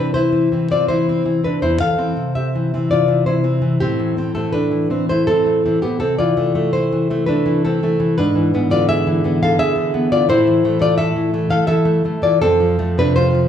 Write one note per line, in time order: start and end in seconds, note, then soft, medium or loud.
0.00 1.58 C3 medium
0.00 0.31 E3 medium
0.00 0.52 C4 medium
0.00 0.14 D4 medium
0.00 0.14 B4 medium
0.14 0.67 E4 medium
0.14 0.68 C5 medium
0.32 0.51 E3 medium
0.52 0.71 E3 medium
0.52 0.70 C4 medium
0.71 1.08 C4 medium
0.71 0.89 F4 medium
0.71 0.88 D5 medium
0.88 1.24 E3 medium
0.88 1.40 E4 medium
0.88 1.41 C5 loud
1.09 1.25 C4 medium
1.25 1.42 E3 medium
1.25 1.58 C4 medium
1.44 1.62 E3 medium
1.44 1.62 D4 medium
1.44 1.62 B4 medium
1.62 1.80 E2 medium
1.62 1.79 E4 medium
1.62 1.80 C5 medium
1.81 1.97 E3 medium
1.81 2.32 A4 medium
1.81 2.33 F5 medium
1.98 2.16 E3 medium
1.98 2.73 C4 medium
2.17 2.90 C3 medium
2.35 2.87 G4 medium
2.35 2.88 E5 medium
2.55 2.73 E3 medium
2.74 3.07 E3 medium
2.74 3.43 C4 medium
2.91 3.26 C3 medium
2.91 3.25 F4 medium
2.91 3.25 D5 medium
3.08 3.43 E3 medium
3.26 3.81 C3 medium
3.26 3.77 E4 medium
3.26 3.78 C5 medium
3.44 3.61 E3 soft
3.44 3.77 C4 medium
3.62 3.80 E3 medium
3.80 5.96 A2 medium
3.80 4.17 C4 medium
3.80 4.34 G4 loud
3.99 4.16 E3 medium
4.17 4.70 E3 medium
4.17 4.34 C4 medium
4.35 4.90 A3 medium
4.35 4.53 C4 medium
4.35 4.52 A4 medium
4.53 5.05 D4 medium
4.53 5.06 B4 medium
4.71 4.89 E3 medium
4.90 5.27 E3 medium
4.90 5.09 C4 medium
5.09 5.28 A3 medium
5.09 5.27 E4 medium
5.09 5.27 C5 medium
5.27 5.64 E3 medium
5.27 5.64 C4 medium
5.27 5.79 A4 loud
5.46 5.65 A3 medium
5.66 5.81 E3 medium
5.66 5.97 C4 medium
5.82 6.00 E3 medium
5.82 5.99 B3 medium
5.82 5.99 G4 medium
6.00 8.13 C3 medium
6.00 6.17 C4 medium
6.00 6.18 A4 medium
6.19 6.36 E3 medium
6.19 6.70 F4 medium
6.19 6.71 D5 loud
6.37 6.91 E3 medium
6.37 6.54 A3 medium
6.55 7.10 A3 medium
6.73 7.25 E4 medium
6.73 7.26 C5 medium
6.92 7.09 E3 medium
7.10 7.45 E3 medium
7.10 7.26 A3 medium
7.26 7.64 A3 medium
7.26 7.62 D4 medium
7.26 7.62 B4 medium
7.46 7.82 E3 medium
7.65 7.82 A3 medium
7.65 8.15 C4 medium
7.65 8.16 A4 medium
7.83 7.99 E3 medium
7.83 8.15 A3 medium
8.00 8.17 E3 medium
8.18 9.58 G#2 medium
8.18 8.67 D4 medium
8.18 8.68 B4 loud
8.35 8.53 E3 medium
8.54 9.06 E3 medium
8.54 9.24 B3 medium
8.71 9.41 D3 medium
8.71 8.88 F4 medium
8.71 8.88 D5 loud
8.89 9.38 G#4 medium
8.89 9.39 E5 loud
9.07 9.23 E3 medium
9.24 9.58 E3 medium
9.24 9.93 B3 medium
9.43 9.75 D3 medium
9.43 9.59 A4 medium
9.43 9.59 F5 medium
9.59 9.93 E3 medium
9.59 10.08 G#4 loud
9.59 10.09 E5 loud
9.76 10.29 D3 medium
9.94 10.11 E3 medium
9.94 10.26 B3 medium
10.12 10.29 E3 medium
10.12 10.28 F4 medium
10.12 10.29 D5 loud
10.29 11.49 A2 medium
10.29 10.78 E4 medium
10.29 10.79 C5 loud
10.47 10.64 E3 medium
10.65 11.15 E3 medium
10.65 10.79 A3 medium
10.80 11.33 A3 medium
10.80 10.98 F4 medium
10.80 10.97 D5 loud
10.98 11.47 A4 medium
10.98 11.48 E5 loud
11.16 11.32 E3 medium
11.33 11.66 E3 medium
11.33 11.49 A3 medium
11.50 11.84 A3 medium
11.50 11.67 A4 medium
11.50 11.67 F5 loud
11.67 12.03 E3 medium
11.67 12.20 A4 loud
11.67 12.21 E5 loud
11.85 12.04 A3 medium
12.05 12.21 E3 medium
12.05 12.39 A3 medium
12.22 12.42 E3 medium
12.22 12.42 F4 medium
12.22 12.41 D5 loud
12.42 13.48 F2 medium
12.42 12.95 C4 medium
12.42 12.96 A4 loud
12.60 12.78 F3 medium
12.79 13.34 F3 medium
12.79 13.48 A3 medium
12.98 13.48 C3 medium
12.98 13.17 D4 medium
12.98 13.15 B4 loud
13.16 13.48 F4 medium
13.16 13.48 C5 loud
13.35 13.48 F3 medium